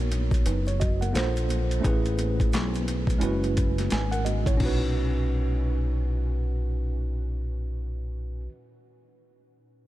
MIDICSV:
0, 0, Header, 1, 4, 480
1, 0, Start_track
1, 0, Key_signature, 5, "major"
1, 0, Tempo, 689655
1, 1286, Time_signature, 4, 2, 24, 8
1, 6870, End_track
2, 0, Start_track
2, 0, Title_t, "Tine electric piano"
2, 0, Program_c, 0, 4
2, 0, Note_on_c, 0, 59, 73
2, 0, Note_on_c, 0, 63, 72
2, 0, Note_on_c, 0, 66, 69
2, 0, Note_on_c, 0, 70, 71
2, 0, Note_on_c, 0, 73, 83
2, 298, Note_off_c, 0, 63, 0
2, 303, Note_off_c, 0, 66, 0
2, 309, Note_off_c, 0, 70, 0
2, 313, Note_off_c, 0, 73, 0
2, 321, Note_on_c, 0, 71, 62
2, 323, Note_on_c, 0, 63, 57
2, 463, Note_off_c, 0, 71, 0
2, 464, Note_off_c, 0, 63, 0
2, 468, Note_on_c, 0, 73, 61
2, 556, Note_on_c, 0, 66, 58
2, 557, Note_on_c, 0, 75, 66
2, 559, Note_off_c, 0, 73, 0
2, 701, Note_off_c, 0, 66, 0
2, 701, Note_off_c, 0, 75, 0
2, 703, Note_on_c, 0, 78, 51
2, 711, Note_on_c, 0, 70, 51
2, 765, Note_off_c, 0, 59, 0
2, 787, Note_on_c, 0, 58, 70
2, 790, Note_on_c, 0, 62, 57
2, 794, Note_on_c, 0, 65, 69
2, 800, Note_on_c, 0, 69, 67
2, 807, Note_on_c, 0, 72, 86
2, 936, Note_off_c, 0, 78, 0
2, 940, Note_off_c, 0, 70, 0
2, 1256, Note_on_c, 0, 57, 71
2, 1266, Note_on_c, 0, 61, 68
2, 1277, Note_off_c, 0, 58, 0
2, 1277, Note_on_c, 0, 64, 73
2, 1278, Note_off_c, 0, 62, 0
2, 1280, Note_off_c, 0, 65, 0
2, 1282, Note_on_c, 0, 68, 74
2, 1283, Note_off_c, 0, 69, 0
2, 1287, Note_off_c, 0, 72, 0
2, 1296, Note_on_c, 0, 71, 86
2, 2212, Note_off_c, 0, 57, 0
2, 2216, Note_on_c, 0, 56, 80
2, 2217, Note_off_c, 0, 61, 0
2, 2222, Note_off_c, 0, 64, 0
2, 2225, Note_off_c, 0, 68, 0
2, 2225, Note_on_c, 0, 61, 77
2, 2232, Note_off_c, 0, 71, 0
2, 2233, Note_on_c, 0, 64, 75
2, 2242, Note_on_c, 0, 66, 74
2, 2253, Note_on_c, 0, 71, 82
2, 2710, Note_off_c, 0, 64, 0
2, 2714, Note_off_c, 0, 66, 0
2, 2720, Note_off_c, 0, 71, 0
2, 2729, Note_on_c, 0, 80, 58
2, 2731, Note_on_c, 0, 71, 47
2, 2864, Note_on_c, 0, 78, 70
2, 2868, Note_off_c, 0, 71, 0
2, 2868, Note_off_c, 0, 80, 0
2, 2869, Note_on_c, 0, 70, 66
2, 2957, Note_off_c, 0, 78, 0
2, 2957, Note_on_c, 0, 75, 66
2, 2959, Note_off_c, 0, 70, 0
2, 2962, Note_on_c, 0, 66, 51
2, 3101, Note_off_c, 0, 75, 0
2, 3104, Note_off_c, 0, 66, 0
2, 3108, Note_on_c, 0, 73, 66
2, 3110, Note_on_c, 0, 64, 52
2, 3162, Note_on_c, 0, 46, 74
2, 3172, Note_off_c, 0, 56, 0
2, 3176, Note_off_c, 0, 61, 0
2, 3184, Note_on_c, 0, 61, 75
2, 3200, Note_on_c, 0, 63, 72
2, 3222, Note_on_c, 0, 66, 78
2, 3240, Note_on_c, 0, 71, 90
2, 3339, Note_off_c, 0, 64, 0
2, 3339, Note_off_c, 0, 73, 0
2, 5848, Note_off_c, 0, 46, 0
2, 5870, Note_off_c, 0, 61, 0
2, 5885, Note_off_c, 0, 63, 0
2, 5908, Note_off_c, 0, 66, 0
2, 5926, Note_off_c, 0, 71, 0
2, 6870, End_track
3, 0, Start_track
3, 0, Title_t, "Fingered electric bass"
3, 0, Program_c, 1, 33
3, 0, Note_on_c, 1, 34, 89
3, 302, Note_off_c, 1, 34, 0
3, 323, Note_on_c, 1, 30, 102
3, 780, Note_off_c, 1, 30, 0
3, 799, Note_on_c, 1, 34, 93
3, 1259, Note_off_c, 1, 34, 0
3, 1288, Note_on_c, 1, 33, 92
3, 1765, Note_off_c, 1, 33, 0
3, 1765, Note_on_c, 1, 35, 81
3, 2221, Note_off_c, 1, 35, 0
3, 2245, Note_on_c, 1, 30, 114
3, 2702, Note_off_c, 1, 30, 0
3, 2731, Note_on_c, 1, 32, 94
3, 3185, Note_off_c, 1, 32, 0
3, 3207, Note_on_c, 1, 35, 79
3, 5893, Note_off_c, 1, 35, 0
3, 6870, End_track
4, 0, Start_track
4, 0, Title_t, "Drums"
4, 79, Note_on_c, 9, 64, 74
4, 79, Note_on_c, 9, 82, 46
4, 81, Note_on_c, 9, 42, 75
4, 148, Note_off_c, 9, 64, 0
4, 148, Note_off_c, 9, 82, 0
4, 150, Note_off_c, 9, 42, 0
4, 218, Note_on_c, 9, 36, 89
4, 218, Note_on_c, 9, 82, 45
4, 237, Note_on_c, 9, 42, 55
4, 288, Note_off_c, 9, 36, 0
4, 288, Note_off_c, 9, 82, 0
4, 307, Note_off_c, 9, 42, 0
4, 318, Note_on_c, 9, 42, 79
4, 319, Note_on_c, 9, 82, 77
4, 388, Note_off_c, 9, 42, 0
4, 389, Note_off_c, 9, 82, 0
4, 458, Note_on_c, 9, 82, 45
4, 473, Note_on_c, 9, 42, 49
4, 528, Note_off_c, 9, 82, 0
4, 542, Note_off_c, 9, 42, 0
4, 561, Note_on_c, 9, 82, 42
4, 566, Note_on_c, 9, 42, 76
4, 569, Note_on_c, 9, 36, 85
4, 631, Note_off_c, 9, 82, 0
4, 635, Note_off_c, 9, 42, 0
4, 639, Note_off_c, 9, 36, 0
4, 711, Note_on_c, 9, 63, 82
4, 711, Note_on_c, 9, 82, 56
4, 713, Note_on_c, 9, 42, 51
4, 780, Note_off_c, 9, 63, 0
4, 780, Note_off_c, 9, 82, 0
4, 782, Note_off_c, 9, 42, 0
4, 799, Note_on_c, 9, 82, 58
4, 803, Note_on_c, 9, 42, 92
4, 815, Note_on_c, 9, 38, 102
4, 868, Note_off_c, 9, 82, 0
4, 873, Note_off_c, 9, 42, 0
4, 885, Note_off_c, 9, 38, 0
4, 948, Note_on_c, 9, 82, 51
4, 953, Note_on_c, 9, 42, 51
4, 1017, Note_off_c, 9, 82, 0
4, 1023, Note_off_c, 9, 42, 0
4, 1038, Note_on_c, 9, 63, 61
4, 1038, Note_on_c, 9, 64, 60
4, 1038, Note_on_c, 9, 82, 45
4, 1046, Note_on_c, 9, 42, 73
4, 1107, Note_off_c, 9, 63, 0
4, 1107, Note_off_c, 9, 64, 0
4, 1107, Note_off_c, 9, 82, 0
4, 1116, Note_off_c, 9, 42, 0
4, 1190, Note_on_c, 9, 82, 40
4, 1192, Note_on_c, 9, 42, 59
4, 1260, Note_off_c, 9, 82, 0
4, 1261, Note_off_c, 9, 42, 0
4, 1283, Note_on_c, 9, 82, 60
4, 1285, Note_on_c, 9, 36, 114
4, 1287, Note_on_c, 9, 42, 93
4, 1352, Note_off_c, 9, 82, 0
4, 1354, Note_off_c, 9, 36, 0
4, 1356, Note_off_c, 9, 42, 0
4, 1427, Note_on_c, 9, 82, 50
4, 1431, Note_on_c, 9, 42, 52
4, 1497, Note_off_c, 9, 82, 0
4, 1501, Note_off_c, 9, 42, 0
4, 1516, Note_on_c, 9, 63, 52
4, 1516, Note_on_c, 9, 82, 45
4, 1522, Note_on_c, 9, 42, 76
4, 1585, Note_off_c, 9, 63, 0
4, 1585, Note_off_c, 9, 82, 0
4, 1591, Note_off_c, 9, 42, 0
4, 1669, Note_on_c, 9, 82, 44
4, 1670, Note_on_c, 9, 36, 83
4, 1677, Note_on_c, 9, 42, 51
4, 1739, Note_off_c, 9, 82, 0
4, 1740, Note_off_c, 9, 36, 0
4, 1747, Note_off_c, 9, 42, 0
4, 1758, Note_on_c, 9, 82, 66
4, 1764, Note_on_c, 9, 42, 92
4, 1774, Note_on_c, 9, 38, 119
4, 1827, Note_off_c, 9, 82, 0
4, 1833, Note_off_c, 9, 42, 0
4, 1844, Note_off_c, 9, 38, 0
4, 1908, Note_on_c, 9, 63, 53
4, 1908, Note_on_c, 9, 82, 41
4, 1918, Note_on_c, 9, 42, 53
4, 1977, Note_off_c, 9, 63, 0
4, 1977, Note_off_c, 9, 82, 0
4, 1987, Note_off_c, 9, 42, 0
4, 2004, Note_on_c, 9, 42, 72
4, 2004, Note_on_c, 9, 64, 67
4, 2004, Note_on_c, 9, 82, 53
4, 2074, Note_off_c, 9, 42, 0
4, 2074, Note_off_c, 9, 64, 0
4, 2074, Note_off_c, 9, 82, 0
4, 2138, Note_on_c, 9, 36, 91
4, 2151, Note_on_c, 9, 82, 44
4, 2158, Note_on_c, 9, 42, 59
4, 2208, Note_off_c, 9, 36, 0
4, 2220, Note_off_c, 9, 82, 0
4, 2227, Note_off_c, 9, 42, 0
4, 2236, Note_on_c, 9, 42, 87
4, 2246, Note_on_c, 9, 63, 55
4, 2246, Note_on_c, 9, 82, 81
4, 2305, Note_off_c, 9, 42, 0
4, 2315, Note_off_c, 9, 63, 0
4, 2315, Note_off_c, 9, 82, 0
4, 2389, Note_on_c, 9, 82, 42
4, 2393, Note_on_c, 9, 42, 46
4, 2458, Note_off_c, 9, 82, 0
4, 2463, Note_off_c, 9, 42, 0
4, 2484, Note_on_c, 9, 42, 80
4, 2488, Note_on_c, 9, 82, 44
4, 2489, Note_on_c, 9, 36, 79
4, 2554, Note_off_c, 9, 42, 0
4, 2558, Note_off_c, 9, 82, 0
4, 2559, Note_off_c, 9, 36, 0
4, 2634, Note_on_c, 9, 42, 58
4, 2636, Note_on_c, 9, 63, 81
4, 2636, Note_on_c, 9, 82, 53
4, 2638, Note_on_c, 9, 38, 29
4, 2703, Note_off_c, 9, 42, 0
4, 2705, Note_off_c, 9, 63, 0
4, 2705, Note_off_c, 9, 82, 0
4, 2708, Note_off_c, 9, 38, 0
4, 2718, Note_on_c, 9, 42, 74
4, 2726, Note_on_c, 9, 82, 57
4, 2730, Note_on_c, 9, 38, 106
4, 2787, Note_off_c, 9, 42, 0
4, 2795, Note_off_c, 9, 82, 0
4, 2799, Note_off_c, 9, 38, 0
4, 2870, Note_on_c, 9, 42, 51
4, 2876, Note_on_c, 9, 82, 52
4, 2940, Note_off_c, 9, 42, 0
4, 2945, Note_off_c, 9, 82, 0
4, 2966, Note_on_c, 9, 42, 76
4, 2967, Note_on_c, 9, 63, 55
4, 2967, Note_on_c, 9, 64, 58
4, 2967, Note_on_c, 9, 82, 47
4, 3035, Note_off_c, 9, 42, 0
4, 3037, Note_off_c, 9, 63, 0
4, 3037, Note_off_c, 9, 64, 0
4, 3037, Note_off_c, 9, 82, 0
4, 3106, Note_on_c, 9, 36, 95
4, 3111, Note_on_c, 9, 42, 59
4, 3111, Note_on_c, 9, 82, 45
4, 3176, Note_off_c, 9, 36, 0
4, 3180, Note_off_c, 9, 42, 0
4, 3181, Note_off_c, 9, 82, 0
4, 3202, Note_on_c, 9, 49, 87
4, 3204, Note_on_c, 9, 36, 105
4, 3205, Note_on_c, 9, 63, 75
4, 3271, Note_off_c, 9, 49, 0
4, 3273, Note_off_c, 9, 36, 0
4, 3275, Note_off_c, 9, 63, 0
4, 6870, End_track
0, 0, End_of_file